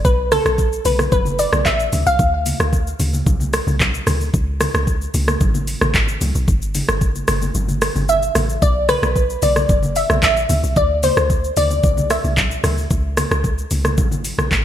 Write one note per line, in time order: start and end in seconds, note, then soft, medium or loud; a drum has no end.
0.05 0.40 B1 loud
0.05 0.30 B4 medium
0.05 kick loud
0.05 shaker medium
0.32 0.87 A4 loud
0.32 cross-stick loud
0.32 open hi-hat medium
0.32 high conga medium
0.32 shaker loud
0.45 0.80 B1 loud
0.45 cross-stick loud
0.45 shaker medium
0.58 kick loud
0.58 shaker medium
0.73 shaker medium
0.85 1.08 B1 loud
0.85 1.11 B4 loud
0.85 open hi-hat medium
0.85 high conga medium
0.85 shaker loud
0.99 cross-stick medium
0.99 high conga medium
0.99 shaker medium
1.12 1.47 F#1 loud
1.12 1.40 B4 loud
1.12 kick loud
1.12 low conga medium
1.12 shaker medium
1.25 high conga medium
1.25 shaker medium
1.39 1.67 D5 loud
1.39 open hi-hat medium
1.39 shaker medium
1.53 1.64 B1 medium
1.53 cross-stick loud
1.53 high conga medium
1.53 shaker medium
1.65 1.89 A1 loud
1.65 2.08 E5 loud
1.65 kick medium
1.65 clap medium
1.65 low conga medium
1.65 shaker medium
1.80 shaker medium
1.93 2.04 D2 loud
1.93 open hi-hat medium
1.93 high conga medium
1.93 low conga medium
1.93 shaker medium
2.06 2.17 C2 medium
2.06 3.10 F5 loud
2.06 shaker medium
2.19 2.54 D2 loud
2.19 kick loud
2.19 shaker medium
2.46 open hi-hat medium
2.46 high conga medium
2.46 shaker loud
2.60 2.94 D2 loud
2.60 cross-stick loud
2.60 shaker medium
2.73 kick loud
2.73 shaker medium
2.87 shaker medium
3.00 3.23 D2 loud
3.00 open hi-hat medium
3.00 high conga medium
3.00 shaker loud
3.13 high conga medium
3.13 shaker medium
3.26 3.61 C2 loud
3.26 kick loud
3.26 low conga medium
3.26 shaker medium
3.40 high conga medium
3.40 shaker medium
3.53 cross-stick loud
3.53 open hi-hat medium
3.53 shaker medium
3.67 4.01 C2 medium
3.67 high conga medium
3.67 shaker medium
3.80 kick medium
3.80 clap medium
3.80 low conga medium
3.80 shaker medium
3.94 shaker medium
4.07 4.30 D2 medium
4.07 cross-stick medium
4.07 open hi-hat medium
4.07 high conga medium
4.07 low conga medium
4.07 shaker medium
4.21 shaker medium
4.34 4.69 C#2 loud
4.34 kick loud
4.34 shaker medium
4.61 cross-stick loud
4.61 open hi-hat medium
4.61 high conga medium
4.61 shaker loud
4.74 5.08 C#2 loud
4.74 cross-stick loud
4.74 shaker medium
4.87 kick loud
4.87 shaker medium
5.02 shaker medium
5.14 5.37 C#2 loud
5.14 open hi-hat medium
5.14 high conga medium
5.14 shaker loud
5.28 cross-stick loud
5.28 high conga medium
5.28 shaker medium
5.41 5.76 G#1 loud
5.41 kick loud
5.41 low conga medium
5.41 shaker medium
5.54 high conga medium
5.54 shaker medium
5.67 open hi-hat medium
5.67 shaker medium
5.81 5.93 A1 medium
5.81 cross-stick loud
5.81 high conga medium
5.81 shaker medium
5.94 6.17 G#1 loud
5.94 kick medium
5.94 clap medium
5.94 low conga medium
5.94 shaker medium
6.08 shaker medium
6.21 6.33 C#2 loud
6.21 open hi-hat medium
6.21 high conga medium
6.21 low conga medium
6.21 shaker medium
6.35 6.46 B1 loud
6.35 shaker medium
6.48 6.83 G1 loud
6.48 kick loud
6.48 shaker medium
6.62 shaker medium
6.75 open hi-hat medium
6.75 high conga medium
6.75 shaker loud
6.88 7.23 G1 medium
6.88 cross-stick loud
6.88 shaker medium
7.01 kick loud
7.01 shaker medium
7.15 high conga soft
7.15 shaker medium
7.28 7.51 G1 loud
7.28 cross-stick loud
7.28 open hi-hat medium
7.28 high conga medium
7.28 shaker loud
7.42 high conga medium
7.42 shaker medium
7.55 7.90 G1 loud
7.55 low conga medium
7.55 shaker medium
7.68 high conga medium
7.68 shaker medium
7.82 cross-stick loud
7.82 open hi-hat medium
7.82 shaker medium
7.96 8.30 G1 medium
7.96 high conga medium
7.96 shaker soft
8.09 8.64 E5 loud
8.09 low conga medium
8.09 shaker medium
8.22 shaker medium
8.35 8.58 A1 medium
8.35 cross-stick medium
8.35 open hi-hat medium
8.35 high conga medium
8.35 low conga medium
8.35 shaker medium
8.49 shaker medium
8.62 8.97 B1 loud
8.62 8.90 D5 loud
8.62 kick loud
8.62 shaker medium
8.89 9.44 B4 loud
8.89 cross-stick loud
8.89 open hi-hat medium
8.89 high conga medium
8.89 shaker loud
9.03 9.37 B1 loud
9.03 cross-stick loud
9.03 shaker medium
9.16 kick loud
9.16 shaker medium
9.30 shaker medium
9.42 9.65 B1 loud
9.42 9.98 D5 loud
9.42 open hi-hat medium
9.42 high conga medium
9.42 shaker loud
9.56 cross-stick medium
9.56 high conga medium
9.56 shaker medium
9.69 10.04 F#1 loud
9.69 kick loud
9.69 low conga medium
9.69 shaker medium
9.82 high conga medium
9.82 shaker medium
9.96 10.22 E5 loud
9.96 open hi-hat medium
9.96 shaker medium
10.10 10.21 B1 medium
10.10 cross-stick loud
10.10 high conga medium
10.10 shaker medium
10.23 10.46 A1 loud
10.23 10.78 E5 loud
10.23 kick medium
10.23 clap medium
10.23 low conga medium
10.23 shaker medium
10.37 shaker medium
10.49 10.61 D2 loud
10.49 open hi-hat medium
10.49 high conga medium
10.49 low conga medium
10.49 shaker medium
10.63 10.74 C2 medium
10.63 shaker medium
10.76 11.11 D2 loud
10.76 11.04 D5 loud
10.76 kick loud
10.76 shaker medium
11.03 11.53 C5 medium
11.03 open hi-hat medium
11.03 high conga medium
11.03 shaker loud
11.17 11.51 D2 loud
11.17 cross-stick loud
11.17 shaker medium
11.30 kick loud
11.30 shaker medium
11.44 shaker medium
11.57 11.80 D2 loud
11.57 12.12 D5 loud
11.57 open hi-hat medium
11.57 high conga medium
11.57 shaker medium
11.71 high conga medium
11.71 shaker medium
11.83 12.19 C2 loud
11.83 kick loud
11.83 low conga medium
11.83 shaker medium
11.97 high conga medium
11.97 shaker medium
12.10 12.23 E5 medium
12.10 cross-stick loud
12.10 open hi-hat soft
12.10 shaker medium
12.24 12.58 C2 medium
12.24 high conga medium
12.24 shaker medium
12.37 kick medium
12.37 clap loud
12.37 low conga medium
12.37 shaker medium
12.51 shaker medium
12.64 12.87 D2 medium
12.64 cross-stick medium
12.64 open hi-hat medium
12.64 high conga medium
12.64 low conga medium
12.64 shaker medium
12.78 shaker medium
12.91 13.26 C#2 loud
12.91 kick loud
12.91 shaker medium
13.17 cross-stick loud
13.17 open hi-hat medium
13.17 high conga medium
13.17 shaker loud
13.31 13.65 C#2 loud
13.31 cross-stick loud
13.31 shaker medium
13.44 kick loud
13.44 shaker medium
13.58 shaker medium
13.71 13.99 C#2 loud
13.71 open hi-hat medium
13.71 high conga medium
13.71 shaker loud
13.85 cross-stick medium
13.85 high conga medium
13.85 shaker medium
13.98 14.33 G#1 loud
13.98 kick loud
13.98 low conga medium
13.98 shaker medium
14.11 high conga medium
14.11 shaker medium
14.25 open hi-hat medium
14.25 shaker medium
14.38 14.49 B1 medium
14.38 cross-stick loud
14.38 high conga medium
14.38 shaker medium
14.51 14.65 G#1 loud
14.51 kick medium
14.51 clap medium
14.51 low conga medium
14.51 shaker medium